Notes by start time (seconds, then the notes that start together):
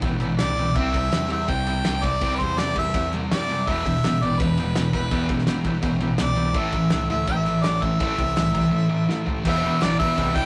0.02 A1 E2 B2 E4 G4 B4, kick, ride
0.20 E4 G4 B4, clap, ride
0.24 E2 B2
0.39 C2 E2 B2 E4 G4 B4 D5, snare, clap, ride
0.57 E2 B2 E4 G4 B4, ride
0.75 C2 C3 G3 C4 E4 G4 C5 E5, kick, ride
0.94 C3 G3 E4 G4 C5, kick, ride
1.12 E2 C3 G3 E4 G4, snare, clap, ride
1.17 C5
1.29 E2 C3 G3 E4 E5, ride
1.33 G4 C5
1.48 C2 C3 G3 G5, kick, ride
1.52 E4 G4 C5
1.67 C3 G3 E4 G4 C5, clap, ride
1.85 C2 C3 G3 E4 G4 C5, snare, clap, ride
2.03 C3 G3 E4 G4 C5 D5, kick, ride
2.21 C2 C3 G3 C4 E4 G4 C5, kick, ride
2.35 C3 B4
2.40 E2 G3 E4 G4 C5, kick, ride
2.44 C5
2.57 E2 C3 G3 E4 G4 D5, snare, clap, ride
2.61 C5
2.75 C3 G3 E4 G4 C5 E5, kick, ride
2.94 E2 C3 G3 E4 G4 C5, kick, ride
3.13 C3 G3 E4 G4 C5, clap, ride
3.31 F#2 C3 G3 E4 G4 C5 D5, snare, clap, ride
3.49 C3 G3 E4 G4 C5, ride
3.67 E1 E2 B2 E3 E4 G4 E5, kick, ride
3.71 B4
3.85 E2 B2 E4 G4 B4, kick, ride
3.95 snare
4.04 G1 E2 B2 E4 G4 B4, snare, clap, ride
4.22 A1 E2 B2 E4 G4 B4 D5, ride
4.40 E1 E2 B2 E4 G4 B4, kick, ride
4.57 E2 B2 E4 G4 B4, clap, ride
4.76 E1 E2 B2 E4 G4 B4, snare, clap, ride
4.93 E2 B2 E4 G4 B4, kick, snare, ride
5.11 E1 E2 B2 E3 E4 G4 B4, kick, ride
5.29 G1 E2 B2 E4 G4 B4, kick, ride
5.38 snare
5.47 G1 E2 B2 E4 G4 B4, snare, clap, ride
5.64 E2 B2 E4 G4 B4, kick, ride
5.82 A1 E2 B2 E4 G4 B4, kick, ride
6.00 E2 B2 E4 G4 B4, ride
6.17 C2 E2 B2 E4 G4 B4, snare, clap, ride
6.23 D5
6.36 E2 B2 E4 G4 B4, ride
6.54 A1 A2 E3 A3 E4 A4 C5, kick, ride
6.58 E5
6.72 A2 E3 E4 A4 C5, kick, ride
6.90 C2 A2 E3 E4 A4 C5, snare, clap, ride
7.09 D2 A2 E3 E4 A4 C5 E5, ride
7.27 A1 A2 E3 E4 A4 C5 G5, kick, ride
7.37 E5
7.46 A2 E3 E4 A4 C5, clap, ride
7.64 A1 A2 E3 E4 A4 C5 D5, snare, clap, ride
7.81 A2 E3 E4 A4 C5 E5, kick, ride
7.99 A1 A2 E3 A3 E4 A4 C5, kick, ride
8.17 C2 A2 E3 E4 A4 C5, kick, ride
8.35 C2 A2 E3 E4 A4 C5, snare, clap, ride
8.52 A2 E3, kick, ride
8.56 E4 A4 C5
8.71 A2 E3 E4 A4
8.75 C5
8.89 A2 E3 E4
8.94 A4 C5
9.09 A2 E3 E4 A4 C5, snare
9.26 A2 E3 E4 A4 C5, floor tom
9.44 E1 E2 B2 E3 E4 G4 B4 E5, kick, crash
9.62 E2 B2 E3 E4 G4
9.67 B4
9.81 A1 E2 B2 E3 E4 G4 B4 D5, snare, clap, crash
9.99 E2 B2 E3 E4 G4 E5, kick
10.04 B4
10.17 C2 E2 B2 E3 E4 G4 B4, kick, crash
10.35 E2 B2 E3 E4 G5, kick, clap
10.39 G4 B4